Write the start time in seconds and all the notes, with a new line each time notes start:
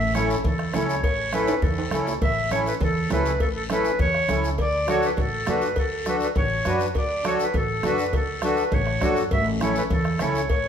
Already playing: A1 E5
0.14 C#4 E4 A4 C#5, bombo rim, cowbell, high conga, short guiro
0.30 short guiro
0.43 E2 A4, bombo low, cowbell, high conga, low conga, long guiro
0.59 bombo rim
0.74 C#2 C#4 E4 A4 C#5, bombo rim, cowbell, high conga, low timbale, short guiro
0.89 short guiro
1.03 A1 C#5, bombo low, cowbell, high conga, long guiro
1.33 C#4 E4 A4 B4, bombo rim, cowbell, high conga, short guiro
1.47 high timbale, short guiro
1.62 E2 A4, bombo low, cowbell, high conga, low conga, long guiro
1.78 high timbale
1.91 C#2 C#4 E4 A4, bombo rim, cowbell, high conga, short guiro
2.07 low timbale, short guiro
2.22 A1 E5, bombo low, cowbell, high conga, low conga, long guiro
2.51 C#4 E4 A4 C#5, bombo rim, cowbell, high conga, short guiro
2.66 B4, short guiro
2.81 E2 A4, bombo low, cowbell, high conga, low conga, long guiro
3.10 C#2 C#4 E4 A4 B4, bombo rim, cowbell, high conga, low conga, low timbale, short guiro
3.25 short guiro
3.40 A1 A4, bombo low, cowbell, high conga, long guiro
3.56 A4
3.70 C#4 E4 A4 B4, bombo rim, cowbell, high conga, short guiro
3.84 short guiro
3.99 E2 C#5, bombo low, cowbell, high conga, low conga, long guiro
4.14 bombo rim
4.29 C#2 C#4 E4 A4, bombo rim, cowbell, high conga, short guiro
4.44 short guiro
4.58 D2 D5, bombo low, cowbell, high conga, long guiro
4.87 D4 F#4 A4 C#5, bombo rim, cowbell, high conga, short guiro
5.03 B4, short guiro
5.17 A1 A4, bombo low, cowbell, high conga, low conga, long guiro
5.46 F#2 D4 F#4 A4 B4, bombo rim, cowbell, high conga, low conga, low timbale, short guiro
5.62 short guiro
5.76 D2 A4, bombo low, cowbell, high conga, long guiro
6.05 D4 F#4 A4 B4, bombo rim, cowbell, high conga, short guiro
6.20 B4, short guiro
6.35 A1 C#5, bombo low, cowbell, high conga, low conga, long guiro
6.65 F#2 D4 F#4 B4, bombo rim, cowbell, high conga, short guiro
6.80 short guiro
6.94 D2 D5, bombo low, cowbell, high conga, long guiro
7.24 D4 F#4 A4 C#5, bombo rim, cowbell, high conga, short guiro
7.40 B4, short guiro
7.54 A1 A4, bombo low, cowbell, high conga, low conga, long guiro
7.83 F#2 D4 F#4 A4 B4, bombo rim, cowbell, high conga, low conga, short guiro
7.98 short guiro
8.13 D2 A4, bombo low, cowbell, high conga, low conga, long guiro
8.42 D4 F#4 A4 B4, bombo rim, cowbell, high conga, short guiro
8.57 short guiro
8.72 A1 C#5, bombo low, cowbell, high conga, low conga, long guiro
8.87 bombo rim
9.01 F#2 D4 F#4 A4, bombo low, bombo rim, cowbell, high conga, low timbale, short guiro
9.16 short guiro
9.31 A1 E5, bombo low, cowbell, high conga, long guiro
9.61 C#4 E4 A4 C#5, bombo rim, cowbell, high conga, short guiro
9.76 B4, short guiro
9.90 E2 A4, bombo low, cowbell, high conga, low conga, long guiro
10.05 bombo rim
10.19 C#2 C#4 E4 A4 C#5, bombo rim, cowbell, high conga, low conga, short guiro
10.35 short guiro
10.49 A1 C#5, bombo low, cowbell, high conga, long guiro